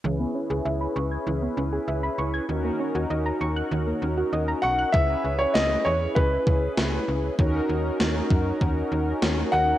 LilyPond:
<<
  \new Staff \with { instrumentName = "Grand piano" } { \time 4/4 \key cis \dorian \tempo 4 = 98 r1 | r2. r8 fis''8 | e''8. cis''16 dis''8 cis''8 b'4. r8 | r2. r8 fis''8 | }
  \new Staff \with { instrumentName = "Synth arpeggio sound" } { \time 4/4 \key cis \dorian e16 b16 cis'16 gis'16 e''16 b''16 cis'''16 gis'''16 e16 b16 cis'16 gis'16 e''16 b''16 cis'''16 gis'''16 | dis16 ais16 cis'16 fis'16 dis''16 ais''16 cis'''16 fis'''16 dis16 ais16 cis'16 fis'16 dis''16 ais''16 cis'''16 fis'''16 | r1 | r1 | }
  \new Staff \with { instrumentName = "Analog polysynth" } { \time 4/4 \key cis \dorian <cis' e' gis' b'>1 | <cis' dis' fis' ais'>1 | <cis' e' gis' b'>1 | <cis' dis' fis' ais'>1 | }
  \new Staff \with { instrumentName = "FM bass" } { \clef bass \time 4/4 \key cis \dorian cis,8 r16 cis,16 cis,8 cis,8 cis,8 cis,8 cis,8 cis,8 | dis,8 r16 dis,16 dis,8 dis,8 dis,8 dis,8 dis,8 b,,8 | cis,8 cis,8 cis,8 e,8 cis,8 cis,8 cis,8 cis,8 | dis,8 dis,8 dis,8 fis,8 dis,8 dis,8 dis,8 dis,8 | }
  \new DrumStaff \with { instrumentName = "Drums" } \drummode { \time 4/4 r4 r4 r4 r4 | r4 r4 r4 r4 | bd4 sn4 bd8 bd8 sn4 | bd4 sn8 bd8 bd4 sn4 | }
>>